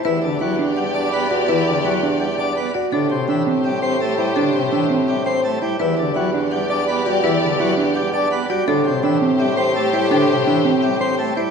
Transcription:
<<
  \new Staff \with { instrumentName = "Marimba" } { \time 4/4 \key a \dorian \tempo 4 = 167 b'8 r8 g''8 r8 fis''8 g''8 r8 d''8 | b'8 r8 g''8 r8 fis''8 g''8 r8 d''8 | a'8 r8 g''8 r8 e''8 g''8 r8 c''8 | a'8 r8 g''8 r8 e''8 g''8 r8 c''8 |
b'8 r8 g''8 r8 fis''8 g''8 r8 d''8 | b'8 r8 g''8 r8 fis''8 g''8 r8 d''8 | a'8 r8 g''8 r8 e''8 g''8 r8 c''8 | a'8 r8 g''8 r8 e''8 g''8 r8 c''8 | }
  \new Staff \with { instrumentName = "String section" } { \time 4/4 \key a \dorian <g' d''>1~ | <g' d''>2.~ <g' d''>8 r8 | <g' c''>1~ | <g' c''>2.~ <g' c''>8 r8 |
<g' d''>1~ | <g' d''>2.~ <g' d''>8 r8 | <g' c''>1~ | <g' c''>2.~ <g' c''>8 r8 | }
  \new Staff \with { instrumentName = "Alto flute" } { \time 4/4 \key a \dorian g'1~ | g'2.~ g'8 r8 | g'1~ | g'2.~ g'8 r8 |
g'1~ | g'2.~ g'8 r8 | g'1~ | g'2.~ g'8 r8 | }
  \new Staff \with { instrumentName = "Clean electric guitar" } { \time 4/4 \key a \dorian e'8 r8 e'8 d'8 r8 d''8 r8 fis'8 | e'8 r8 e'8 d'8 r8 d''8 r8 fis'8 | d'8 r8 d'8 c'8 r8 c''8 r8 e'8 | d'8 r8 d'8 c'8 r8 c''8 r8 e'8 |
e'8 r8 e'8 d'8 r8 d''8 r8 fis'8 | e'8 r8 e'8 d'8 r8 d''8 r8 fis'8 | d'8 r8 d'8 c'8 r8 c''8 r8 e'8 | d'8 r8 d'8 c'8 r8 c''8 r8 e'8 | }
  \new Staff \with { instrumentName = "Pipe organ" } { \clef bass \time 4/4 \key a \dorian e8 d8 fis8 r8 g8 d'8 b8 r8 | e8 d8 fis8 r8 g8 d'8 b8 r8 | d8 c8 e8 r8 g8 c'8 a8 g8 | d8 c8 e8 r8 g8 c'8 a8 g8 |
e8 d8 fis8 r8 g8 d'8 b8 g8 | e8 d8 fis8 r8 g8 d'8 b8 g8 | d8 c8 e8 r8 g8 c'8 a8 g8 | d8 c8 e8 r8 g8 c'8 a8 g8 | }
  \new Staff \with { instrumentName = "Bassoon" } { \clef bass \time 4/4 \key a \dorian e,1~ | e,1 | a,1~ | a,1 |
e,1~ | e,1 | a,1~ | a,1 | }
>>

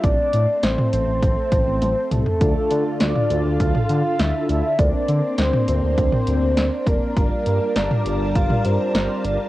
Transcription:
<<
  \new Staff \with { instrumentName = "Soft synth lead" } { \time 4/4 \key d \minor \tempo 4 = 101 d''4 c''8 c''2 a'8~ | a'4 d''4 f''4 e''4 | d''4 c''8 c''2 bes'8~ | bes'4 d''4 f''8 c''4 d''8 | }
  \new Staff \with { instrumentName = "String machine" } { \time 4/4 \key d \minor << { <a c'>1 | <d f' a'>1 | <bes c'>1 | <g f' bes' a''>1 | } \\ { r1 | d'1~ | d'1~ | d'1 | } >> }
  \new Staff \with { instrumentName = "Analog synth bass" } { \clef bass \time 4/4 \key d \minor a,,16 r16 a,16 r16 a,,16 r16 a,,16 a,,16 a,,16 r16 a,,16 a,,16 a,,16 r16 c,16 r16 | d,16 r16 d16 r16 d,16 r16 d,16 d,16 d,16 r16 d16 r16 d,16 r16 d,16 r16 | d,16 r16 d16 r16 d,16 r16 d,16 d,16 d,16 r16 d,16 d,16 d,16 r16 f,,16 r16 | g,,16 r16 g,16 r16 g,,16 r16 g,,16 g,,16 g,,16 r16 g,16 r16 g,,16 r16 g,,16 r16 | }
  \new DrumStaff \with { instrumentName = "Drums" } \drummode { \time 4/4 <hh bd>8 hh8 <hh sn>16 toml16 hh8 <hh bd>8 <hh bd>8 <hh tommh>8 <hh toml>16 tomfh16 | <hh bd>8 hh8 <hh sn>16 toml16 hh8 <hh bd>16 toml16 hh8 <hh sn>8 hh8 | <hh bd>8 hh8 <hh sn>16 toml16 hh8 <hh bd>16 toml16 hh8 <hh sn>8 <hh bd>8 | <hh bd>8 hh8 <hh sn>16 toml16 hh8 <hh bd>16 toml16 hh8 <hh sn>8 hh8 | }
>>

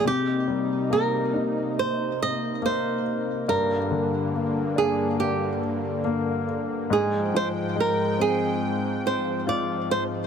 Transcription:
<<
  \new Staff \with { instrumentName = "Nylon-string guitar" } { \time 4/4 \key c \minor \tempo 4 = 70 g'4 bes'4 c''8 ees''8 c''4 | bes'4. aes'8 g'4. r8 | aes'8 c''8 bes'8 aes'4 c''8 d''8 c''8 | }
  \new Staff \with { instrumentName = "Grand piano" } { \time 4/4 \key c \minor c8 g8 bes8 ees'4. bes4 | g,8 d8 bes8 d'4. bes4 | aes,8 f8 aes8 c'4. f'4 | }
  \new Staff \with { instrumentName = "Analog synth pad" } { \clef bass \time 4/4 \key c \minor <c bes ees'>1 | <g, d>1 | <aes, f g''>1 | }
>>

